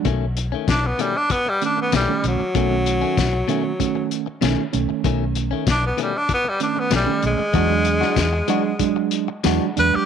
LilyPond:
<<
  \new Staff \with { instrumentName = "Tenor saxophone" } { \time 4/4 \key b \dorian \tempo 4 = 96 r4 d'16 b16 g16 d'16 b16 g16 d'16 b16 g8 fis8~ | fis2~ fis8 r4. | r4 d'16 b16 g16 d'16 b16 g16 d'16 b16 g8 gis8~ | gis2~ gis8 r4 b'16 g'16 | }
  \new Staff \with { instrumentName = "Clean electric guitar" } { \time 4/4 \key b \dorian <b, dis a cis'>16 r8 <dis a cis'>16 r8 <b, dis a cis'>16 r4 r16 <b, dis a cis'>16 r8. | <b, dis a cis'>16 r8 <dis a cis'>16 r8 <b, dis a cis'>16 r4 r16 <b, dis a cis'>16 r8. | <b, dis a cis'>16 r8 <dis a cis'>16 r8 <b, dis a cis'>16 r4 r16 <b, dis a cis'>16 r8. | <e gis d' fis'>16 r8 <gis d' fis'>16 r8 <e gis d' fis'>16 r4 r16 <e gis d' fis'>16 r8. | }
  \new Staff \with { instrumentName = "Reed electric piano" } { \time 4/4 \key b \dorian r2 r8 <dis a cis'>8 r16 <dis a cis'>8 r16 | <dis a cis'>16 <dis a cis'>4 r16 <dis a cis'>16 r16 <dis a cis'>8. r16 <dis a cis'>16 r16 <dis a cis'>8~ | <dis a cis'>4 r4. <dis a cis'>8 r16 <dis a cis'>8 r16 | <fis gis d'>16 <fis gis d'>4 r16 <fis gis d'>16 r16 <fis gis d'>8. r16 <fis gis d'>16 r16 <fis gis d'>8 | }
  \new Staff \with { instrumentName = "Fingered electric bass" } { \clef bass \time 4/4 \key b \dorian b,,4 b,,8 r4. b,,16 r16 b,,16 r16 | b,,4 b,,8 r4. b,,16 r16 b,,16 r16 | b,,4 b,,8 r4. b,,16 r16 b,,16 r16 | e,4 e,8 r4. e,16 r16 e,16 r16 | }
  \new DrumStaff \with { instrumentName = "Drums" } \drummode { \time 4/4 <hh bd>8 hh8 <hh bd sn tamb>8 hh8 <hh bd>8 hh8 <hh sn tamb>8 hh8 | <hh bd>8 hh8 <hh bd sn tamb>8 hh8 <hh bd>8 hh8 <hh sn tamb>8 hh8 | <hh bd>8 hh8 <hh bd sn tamb>8 hh8 <hh bd>8 hh8 <hh sn tamb>8 hh8 | <hh bd>8 hh16 sn16 <hh bd sn tamb>8 hh8 <hh bd>8 hh8 <hh sn tamb>8 hh8 | }
>>